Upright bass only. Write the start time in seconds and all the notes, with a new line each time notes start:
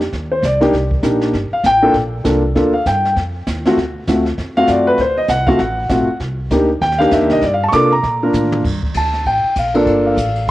Already playing: F2
0.13 D#2
0.42 C2
0.73 C2
1.03 A#1
1.33 G1
1.51 muted upright bass stroke
1.64 A1
1.94 A#1
2.25 C2
2.55 D2
2.86 G2
3.16 F2
3.47 D#2
3.77 D2
4.07 D2
4.38 F2
4.68 F#2
4.98 D2
5.28 C2
5.59 A1
5.90 A#1
6.08 muted upright bass stroke
6.20 C2
6.50 D2
6.81 D#2
7.11 F2
7.22 D#2
7.31 C2
7.42 G2
7.73 C3
8.04 A#2
8.33 A2
8.65 G2
8.75 F2
8.85 D2
8.95 D2
9.26 A1
9.44 muted upright bass stroke
9.56 A#1
9.86 G1
10.17 A1
10.47 A#1